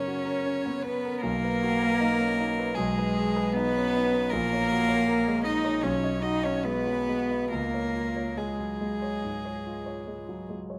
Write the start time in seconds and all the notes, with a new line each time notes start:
Already playing: F#2 C#3 B3 C#4 F#4 A#4 C#5
0.07 F#4
0.25 A#4
0.46 C#4
0.66 B3
0.82 B3 C#4 B4
1.05 A#4
1.21 B1 A#3 A#4
1.44 B4
1.63 F#4
1.82 B4
2.00 D#4
2.19 C#4
2.40 D#4
2.59 B4
2.75 B1 G#3 G#4
2.99 B4
3.16 G#4
3.36 B4
3.53 B3 D#4 B4
3.77 C#4
3.96 D#4
4.13 B4
4.30 A#1 A#3 A#4
4.53 C#5
4.71 F#4
4.89 C#5
5.08 A#3
5.27 G#3
5.44 A#3 D#4 D#5
5.65 C#5
5.81 B1 C#4 C#5
6.04 D#5
6.22 D#4 F#4 D#5
6.43 C#4 C#5 D#5
6.64 G#3 B3 B4
6.86 F#3
7.09 G#3
7.30 D#5
7.51 C#2 A#3 A#4
7.74 C#5
7.96 F4
8.16 C#5
8.37 G#3 G#4
8.59 F#3
8.81 G#3
9.02 C#5
9.24 G#2
9.45 C#5
9.67 F4
9.86 C#5
10.07 G#3
10.29 F#3
10.49 G#3
10.70 C#5